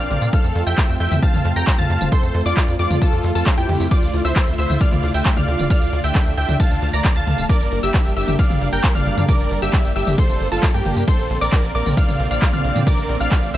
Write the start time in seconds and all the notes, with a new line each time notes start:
Already playing: A#3 C4 D4
0.00 D5 F5 F6
0.11 A#1, open hi-hat, mid tom
0.22 A#2, closed hi-hat, tambourine
0.33 A3 F4 A4 F5 F6, kick, closed hi-hat, tambourine
0.44 F2, closed hi-hat, tambourine
0.55 F2, open hi-hat
0.67 F2 E5 G5 G6, closed hi-hat, tambourine
0.78 kick, clap, closed hi-hat, tambourine
0.89 F2, closed hi-hat, tambourine
1.00 F2 E5 G5 G6, open hi-hat
1.11 F2, closed hi-hat, mid tom, tambourine
1.23 F5 A5 A6, kick, closed hi-hat, tambourine
1.34 F2, closed hi-hat, mid tom, tambourine
1.45 F2, open hi-hat
1.56 F2 G5 A#5 A#6, closed hi-hat, tambourine
1.67 kick, clap, closed hi-hat, tambourine
1.79 F2 F5 A5 A6, closed hi-hat, mid tom, tambourine
1.90 F2, open hi-hat
2.01 F1, closed hi-hat, mid tom, tambourine
2.12 A4 C5 C6, kick, closed hi-hat, tambourine
2.23 F2, closed hi-hat, tambourine
2.35 F2, open hi-hat
2.46 F2 F4 D5 D6, closed hi-hat, tambourine
2.57 kick, clap, closed hi-hat, tambourine
2.68 F2, closed hi-hat, tambourine
2.79 F2 F4 D5 D6, open hi-hat
2.90 F2, closed hi-hat, mid tom, tambourine
3.02 F4 A4 A5, kick, closed hi-hat, tambourine
3.13 F2, closed hi-hat, tambourine
3.24 F2, open hi-hat
3.35 F2 F4 A4 A5, closed hi-hat, tambourine
3.46 kick, clap, closed hi-hat, tambourine
3.58 F2 E4 G4 G5, closed hi-hat, tambourine
3.69 F2, open hi-hat, mid tom
3.80 F2, closed hi-hat, tambourine
3.91 D3 E4 F4 D5 D6, kick, closed hi-hat, ride, tambourine
4.02 D2, closed hi-hat, tambourine
4.14 D2, open hi-hat
4.25 D2 C5 E5 E6, closed hi-hat, tambourine
4.36 kick, clap, closed hi-hat, ride, tambourine
4.47 D2, closed hi-hat, tambourine
4.58 D2 C5 E5 E6, open hi-hat
4.70 D2, closed hi-hat, mid tom, tambourine
4.81 D5 F5 F6, kick, closed hi-hat, ride, tambourine
4.92 D2, closed hi-hat, mid tom, tambourine
5.03 D2, open hi-hat
5.14 D2 E5 G5 G6, closed hi-hat, tambourine
5.26 kick, clap, closed hi-hat, ride, tambourine
5.37 D2 D5 F5 F6, closed hi-hat, mid tom, tambourine
5.48 D2, open hi-hat
5.59 D1, closed hi-hat, mid tom, tambourine
5.70 D4 D5 F5 F6, kick, closed hi-hat, ride, tambourine
5.82 D2, closed hi-hat, tambourine
5.93 D2, open hi-hat
6.04 D2 E5 G5 G6, closed hi-hat, tambourine
6.15 kick, clap, closed hi-hat, ride, tambourine
6.26 D2, closed hi-hat, tambourine
6.37 D2 E5 G5 G6, open hi-hat
6.49 D2, closed hi-hat, mid tom, tambourine
6.60 F5 A5 A6, kick, closed hi-hat, ride, tambourine
6.71 D2, closed hi-hat, tambourine
6.82 D2, open hi-hat
6.93 D2 D5 A#5 A#6, closed hi-hat, tambourine
7.05 kick, clap, closed hi-hat, ride, tambourine
7.16 D2 F5 A5 A6, closed hi-hat, tambourine
7.27 D2, open hi-hat, mid tom
7.38 D1, closed hi-hat, tambourine
7.49 G3 A#3 D4 A#4 D5 D6, kick, closed hi-hat, ride, tambourine
7.61 G1, closed hi-hat, tambourine
7.72 G1, open hi-hat
7.83 G1 G4 E5 E6, closed hi-hat, tambourine
7.94 kick, clap, closed hi-hat, ride, tambourine
8.05 G1, closed hi-hat, tambourine
8.16 G1 G4 E5 E6, open hi-hat
8.28 G1, closed hi-hat, mid tom, tambourine
8.39 D5 F5 F6, kick, closed hi-hat, ride, tambourine
8.50 G1, closed hi-hat, mid tom, tambourine
8.61 G1, open hi-hat
8.73 G1 A#4 G5 G6, closed hi-hat, tambourine
8.84 kick, clap, closed hi-hat, ride, tambourine
8.95 G1 D5 F5 F6, closed hi-hat, mid tom, tambourine
9.06 G1, open hi-hat
9.17 G2, closed hi-hat, mid tom, tambourine
9.29 A#4 D5 D6, kick, closed hi-hat, ride, tambourine
9.40 G1, closed hi-hat, tambourine
9.51 G1, open hi-hat
9.62 G1 G4 E5 E6, closed hi-hat, tambourine
9.73 kick, clap, closed hi-hat, ride, tambourine
9.85 G1, closed hi-hat, tambourine
9.96 G1 G4 E5 E6, open hi-hat
10.07 G1, closed hi-hat, mid tom, tambourine
10.18 A4 C5 C6, kick, closed hi-hat, ride, tambourine
10.29 G1, closed hi-hat, tambourine
10.41 G1, open hi-hat
10.52 G1 F4 A4 A5, closed hi-hat, tambourine
10.63 kick, clap, closed hi-hat, ride, tambourine
10.74 G2 A#3 G4 G5, closed hi-hat, tambourine
10.85 G1, open hi-hat, mid tom
10.97 G2, closed hi-hat, tambourine
11.08 D3 A#3 C4 A4 C5 C6, kick, closed hi-hat, ride, tambourine
11.19 A#1, closed hi-hat, tambourine
11.30 A#1, open hi-hat
11.41 A#1 A#4 D5 D6, closed hi-hat, tambourine
11.52 kick, clap, closed hi-hat, ride, tambourine
11.64 A#1, closed hi-hat, tambourine
11.75 A#1 A#4 D5 D6, open hi-hat
11.86 A#1, closed hi-hat, mid tom, tambourine
11.97 D5 F5 F6, kick, closed hi-hat, ride, tambourine
12.08 A#1, closed hi-hat, mid tom, tambourine
12.20 A#1, open hi-hat
12.31 A#1 D5 F5 F6, tambourine
12.42 kick, clap, closed hi-hat, ride, tambourine
12.53 A#1 D5 F5 F6, closed hi-hat, mid tom, tambourine
12.64 A#1, open hi-hat
12.76 A#2, closed hi-hat, mid tom, tambourine
12.87 A3 A#4 D5 D6, kick, closed hi-hat, ride, tambourine
12.98 A#1, closed hi-hat, tambourine
13.09 A#1, open hi-hat
13.20 A#1 D5 F5 F6, closed hi-hat, tambourine
13.32 kick, clap, closed hi-hat, ride, tambourine
13.43 A#1, closed hi-hat, tambourine
13.54 A#1 C5 E5 E6, open hi-hat